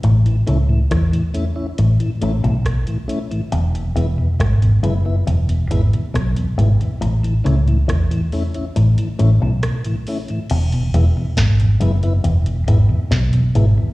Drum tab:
CC |----------------|----------------|----------------|x---------------|
HH |xxx-xxx-xxxxxxxx|xxx-xxx-xxxxxxxx|xxxxxxoxxxx-xxox|xxx-xxxxxxx-xxx-|
SD |----r-------r---|----r-------r---|--r-r-------r---|----o-------o---|
BD |----o-------o---|----o-------o---|----o-----------|----o-------o---|